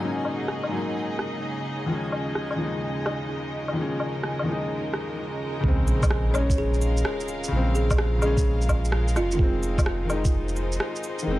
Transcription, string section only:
0.00 9.40 C#3 medium
0.00 1.90 F#3 medium
0.00 7.17 D#4 medium
0.00 2.68 G#4 medium
0.00 6.33 D#5 medium
1.89 11.39 G#3 medium
3.34 10.93 A#4 medium
6.55 11.39 F4 medium
6.71 10.24 F5 medium
9.61 11.39 D#4 medium
9.61 11.39 C5 medium
11.10 11.39 D#5 medium

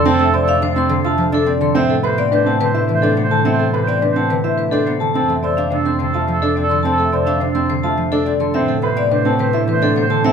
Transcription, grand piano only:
0.06 0.24 C4 loud
0.33 0.52 C5 medium
0.62 0.80 D4 medium
0.76 0.95 C4 medium
1.05 1.23 F4 medium
1.33 1.51 D4 medium
1.61 1.80 A4 medium
1.75 1.94 C4 loud
2.03 2.22 B4 medium
2.31 2.50 D4 medium
2.46 2.64 C4 medium
2.74 2.93 E4 medium
3.03 3.21 D4 loud
3.31 3.50 A4 medium
3.45 3.64 C4 medium
3.73 3.92 B4 medium
4.02 4.20 D4 medium
4.16 4.34 C4 medium
4.44 4.63 E4 medium
4.72 4.91 D4 medium
5.01 5.19 A4 medium
5.15 5.34 C4 medium
5.43 5.62 C5 medium
5.72 5.90 D4 medium
5.86 6.04 C4 medium
6.14 6.33 F4 medium
6.42 6.61 D4 medium
6.71 6.89 A4 medium
6.84 7.03 C4 medium
7.13 7.31 C5 medium
7.41 7.60 D4 medium
7.55 7.74 C4 medium
7.84 8.02 F4 medium
8.12 8.31 D4 loud
8.41 8.59 A4 medium
8.55 8.73 C4 medium
8.83 9.02 B4 medium
9.11 9.30 D4 medium
9.26 9.44 C4 medium
9.54 9.72 E4 medium
9.82 10.01 D4 medium
10.10 10.29 A4 medium
10.24 10.33 C4 loud

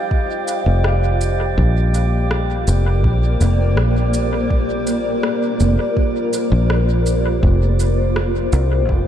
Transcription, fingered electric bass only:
0.66 1.54 F1 medium
1.58 2.64 A#1 medium
2.67 3.04 F1 medium
3.04 3.36 A#1 medium
3.41 3.77 F1 medium
3.77 5.20 A#1 medium
5.60 5.76 F1 medium
6.52 7.40 A#1 medium
7.43 8.49 F1 loud
8.53 8.89 C2 medium
8.89 9.08 F1 loud

